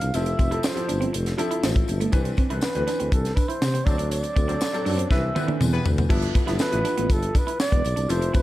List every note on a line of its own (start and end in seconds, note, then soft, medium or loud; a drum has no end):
0.00 0.11 C2 medium
0.00 0.16 E3 medium
0.00 0.14 F3 medium
0.00 0.16 B3 medium
0.00 0.11 D4 medium
0.00 0.14 E4 medium
0.00 0.16 G4 medium
0.00 0.15 A4 medium
0.00 0.17 F5 loud
0.00 closed hi-hat medium
0.00 tambourine soft
0.14 0.33 F1 loud
0.14 0.42 F3 medium
0.14 0.42 C4 medium
0.14 0.42 E4 medium
0.14 0.42 A4 medium
0.14 0.68 E5 loud
0.14 closed hi-hat medium
0.14 tambourine medium
0.26 muted clean electric guitar stroke soft
0.26 closed hi-hat soft
0.26 tambourine soft
0.39 0.57 F1 loud
0.39 0.48 C4 medium
0.39 kick medium
0.39 closed hi-hat medium
0.39 tambourine soft
0.51 0.70 F3 medium
0.51 0.70 C4 medium
0.51 0.70 E4 medium
0.51 0.60 E4 medium
0.51 0.70 A4 medium
0.51 closed hi-hat soft
0.63 1.15 C5 medium
0.63 muted clean electric guitar stroke soft
0.63 snare loud
0.63 tambourine loud
0.75 1.22 F3 medium
0.75 1.22 C4 medium
0.75 1.22 E4 medium
0.75 1.23 A4 medium
0.75 closed hi-hat soft
0.89 1.07 G1 medium
0.89 0.98 D4 medium
0.89 closed hi-hat medium
0.89 tambourine soft
1.01 1.10 C4 medium
1.01 closed hi-hat soft
1.13 1.32 F1 loud
1.13 muted clean electric guitar stroke soft
1.13 closed hi-hat loud
1.13 tambourine medium
1.26 snare soft
1.26 closed hi-hat medium
1.38 1.94 F3 medium
1.38 1.94 C4 medium
1.38 1.48 D4 medium
1.38 1.94 E4 medium
1.38 1.94 A4 loud
1.38 closed hi-hat medium
1.38 tambourine soft
1.51 1.60 E4 medium
1.51 closed hi-hat medium
1.63 1.82 A1 medium
1.63 1.73 C4 medium
1.63 snare loud
1.63 tambourine medium
1.76 kick medium
1.76 closed hi-hat medium
1.76 tambourine soft
1.88 2.07 G1 medium
1.88 muted clean electric guitar stroke soft
1.88 closed hi-hat medium
1.88 tambourine soft
2.00 2.10 A3 medium
2.00 closed hi-hat medium
2.00 tambourine soft
2.12 2.31 C2 loud
2.12 2.40 E3 medium
2.12 2.40 C4 medium
2.12 2.41 D4 medium
2.12 2.41 B4 medium
2.12 kick loud
2.12 closed hi-hat medium
2.12 tambourine medium
2.25 muted clean electric guitar stroke soft
2.25 closed hi-hat soft
2.25 tambourine soft
2.37 2.47 C4 medium
2.37 kick medium
2.37 closed hi-hat medium
2.37 tambourine soft
2.49 2.60 C2 medium
2.49 2.68 E3 medium
2.49 2.68 C4 medium
2.49 2.69 D4 medium
2.49 2.59 E4 medium
2.49 2.69 B4 medium
2.49 closed hi-hat soft
2.61 3.14 B4 medium
2.61 muted clean electric guitar stroke soft
2.61 snare loud
2.61 tambourine medium
2.74 2.85 D2 medium
2.74 3.49 E3 medium
2.74 3.49 C4 medium
2.74 3.49 D4 medium
2.74 3.49 B4 medium
2.74 closed hi-hat soft
2.87 2.96 D4 medium
2.87 snare soft
2.87 closed hi-hat medium
2.87 tambourine soft
3.00 3.09 D2 medium
3.00 3.09 C4 medium
3.00 closed hi-hat medium
3.12 3.31 C2 medium
3.12 3.37 A4 medium
3.12 muted clean electric guitar stroke soft
3.12 kick medium
3.12 closed hi-hat loud
3.12 tambourine medium
3.25 snare soft
3.25 closed hi-hat medium
3.35 3.46 D4 medium
3.35 3.50 B4 medium
3.35 kick medium
3.35 closed hi-hat medium
3.35 tambourine soft
3.48 3.58 E4 medium
3.48 3.87 C5 loud
3.48 closed hi-hat medium
3.62 3.80 C3 medium
3.62 snare loud
3.62 tambourine medium
3.74 3.83 C4 medium
3.74 closed hi-hat medium
3.74 tambourine soft
3.85 4.24 D2 medium
3.85 4.36 F#3 medium
3.85 4.36 C4 medium
3.85 4.36 D4 medium
3.85 4.36 A4 medium
3.85 4.10 D5 loud
3.85 muted clean electric guitar stroke soft
3.85 kick loud
3.85 closed hi-hat medium
3.85 tambourine soft
3.98 4.08 D4 medium
3.98 closed hi-hat medium
4.11 5.07 D5 loud
4.11 closed hi-hat medium
4.11 tambourine medium
4.23 muted clean electric guitar stroke soft
4.23 closed hi-hat soft
4.23 tambourine soft
4.36 4.55 D2 loud
4.36 4.45 C4 medium
4.36 kick medium
4.36 closed hi-hat medium
4.36 tambourine soft
4.48 4.67 F#3 medium
4.48 4.58 C4 medium
4.48 4.67 C4 medium
4.48 4.67 D4 medium
4.48 4.67 A4 medium
4.48 closed hi-hat medium
4.48 tambourine soft
4.61 muted clean electric guitar stroke soft
4.61 snare loud
4.61 tambourine loud
4.73 5.11 F#3 medium
4.73 5.09 C4 medium
4.73 5.09 D4 medium
4.73 5.11 A4 loud
4.73 closed hi-hat soft
4.85 5.04 F#2 medium
4.85 4.97 A3 medium
4.85 4.95 D4 medium
4.85 4.97 D4 medium
4.85 4.97 F#4 medium
4.85 4.97 A4 medium
4.85 open hi-hat medium
4.85 tambourine soft
4.98 5.07 C4 medium
4.98 closed hi-hat medium
5.10 5.29 C2 medium
5.10 5.30 E3 medium
5.10 5.21 B3 medium
5.10 5.31 C4 medium
5.10 5.31 D4 medium
5.10 5.21 E4 medium
5.10 5.21 G4 medium
5.10 5.21 B4 medium
5.10 5.31 B4 medium
5.10 5.57 E5 medium
5.10 muted clean electric guitar stroke soft
5.10 kick medium
5.10 snare medium
5.10 tambourine medium
5.35 5.42 D3 medium
5.35 5.45 B3 medium
5.35 5.47 B3 medium
5.35 5.91 C4 medium
5.35 5.92 D4 medium
5.35 5.46 E4 medium
5.35 5.46 G4 medium
5.35 5.47 B4 medium
5.35 5.92 B4 medium
5.35 high tom medium
5.35 tambourine medium
5.41 5.94 E3 medium
5.48 5.57 D4 medium
5.48 high tom medium
5.61 5.79 E2 medium
5.61 5.70 C4 medium
5.61 mid tom medium
5.61 tambourine medium
5.73 5.89 B3 medium
5.73 5.89 E4 medium
5.73 5.89 G4 medium
5.73 5.89 B4 loud
5.73 tambourine soft
5.86 6.04 D2 medium
5.86 muted clean electric guitar stroke soft
5.86 floor tom loud
5.86 tambourine soft
5.98 6.07 B3 medium
5.98 floor tom medium
5.98 tambourine soft
6.09 6.29 G1 loud
6.09 6.38 F3 medium
6.09 6.38 B3 medium
6.09 6.38 E4 medium
6.09 6.38 A4 medium
6.09 kick loud
6.09 crash medium
6.09 tambourine medium
6.22 muted clean electric guitar stroke soft
6.22 closed hi-hat medium
6.35 6.44 B3 medium
6.35 kick medium
6.35 closed hi-hat medium
6.35 tambourine soft
6.46 6.57 G1 loud
6.46 6.65 F3 medium
6.46 6.66 B3 medium
6.46 6.66 E4 medium
6.46 6.57 E4 medium
6.46 6.66 A4 medium
6.46 snare soft
6.46 closed hi-hat medium
6.59 7.14 B4 loud
6.59 muted clean electric guitar stroke soft
6.59 snare loud
6.59 tambourine medium
6.71 6.82 A1 loud
6.71 7.46 F3 medium
6.71 7.46 B3 medium
6.71 7.46 E4 medium
6.71 7.47 B4 medium
6.71 closed hi-hat soft
6.85 6.94 D4 medium
6.85 closed hi-hat medium
6.85 tambourine soft
6.97 7.07 A1 medium
6.97 7.07 B3 medium
6.97 closed hi-hat soft
7.10 7.28 G1 medium
7.10 7.39 A4 medium
7.10 muted clean electric guitar stroke soft
7.10 kick medium
7.10 closed hi-hat medium
7.10 tambourine medium
7.22 closed hi-hat medium
7.35 7.44 D4 medium
7.35 7.60 B4 loud
7.35 kick medium
7.35 closed hi-hat medium
7.35 tambourine soft
7.47 7.56 E4 medium
7.47 closed hi-hat medium
7.60 8.12 D5 loud
7.60 snare loud
7.60 tambourine medium
7.72 7.82 E1 medium
7.72 7.81 B3 medium
7.72 kick medium
7.72 closed hi-hat medium
7.72 tambourine soft
7.84 7.94 B1 medium
7.84 muted clean electric guitar stroke soft
7.84 closed hi-hat medium
7.84 tambourine soft
7.96 8.06 C2 medium
7.96 8.06 D4 medium
7.96 closed hi-hat medium
7.96 tambourine soft
8.09 8.28 F1 loud
8.09 8.37 F3 medium
8.09 8.37 C4 medium
8.09 8.37 E4 medium
8.09 8.37 A4 medium
8.09 8.34 C5 loud
8.09 closed hi-hat medium
8.09 tambourine medium
8.21 muted clean electric guitar stroke soft
8.21 closed hi-hat soft
8.21 tambourine soft
8.34 8.42 F1 loud
8.34 8.42 C4 medium
8.34 8.42 B4 loud
8.34 kick medium
8.34 closed hi-hat medium
8.34 tambourine soft